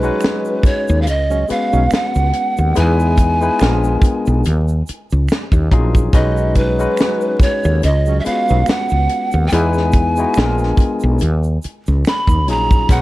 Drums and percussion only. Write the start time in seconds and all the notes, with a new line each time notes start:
0.03 shaker
0.21 finger snap, snare, closed hi-hat, shaker
0.45 shaker
0.63 kick, closed hi-hat, shaker
0.88 shaker
1.07 closed hi-hat, shaker
1.30 shaker
1.48 closed hi-hat, shaker
1.73 shaker
1.91 finger snap, snare, closed hi-hat, shaker
2.15 shaker
2.33 closed hi-hat
2.57 shaker
2.76 closed hi-hat, shaker
3.00 shaker
3.17 kick, closed hi-hat, shaker
3.42 shaker
3.59 finger snap, snare, closed hi-hat, shaker
3.84 shaker
4.02 kick, closed hi-hat, shaker
4.26 shaker
4.44 closed hi-hat, shaker
4.68 shaker
4.87 closed hi-hat, shaker
5.11 shaker
5.28 finger snap, snare, closed hi-hat, shaker
5.52 kick, shaker
5.71 kick, closed hi-hat
5.95 kick, shaker
6.13 kick, closed hi-hat, shaker
6.37 shaker
6.55 kick, closed hi-hat, shaker
6.79 shaker
6.97 finger snap, snare, closed hi-hat, shaker
7.21 shaker
7.40 kick, snare, closed hi-hat, shaker
7.64 shaker
7.83 closed hi-hat, shaker
8.06 shaker
8.25 closed hi-hat, shaker
8.48 shaker
8.66 finger snap, snare, closed hi-hat, shaker
8.89 shaker
9.09 closed hi-hat
9.32 shaker
9.50 closed hi-hat, shaker
9.73 shaker
9.77 snare
9.92 kick, closed hi-hat, shaker
10.16 shaker
10.34 finger snap, shaker
10.38 snare, closed hi-hat
10.58 shaker
10.63 snare
10.77 kick, closed hi-hat, shaker
11.00 shaker
11.19 closed hi-hat, shaker
11.43 shaker
11.62 closed hi-hat, shaker
11.87 shaker
12.05 finger snap, snare, closed hi-hat, shaker
12.27 kick, shaker
12.48 closed hi-hat
12.71 kick, shaker
12.89 kick, closed hi-hat, shaker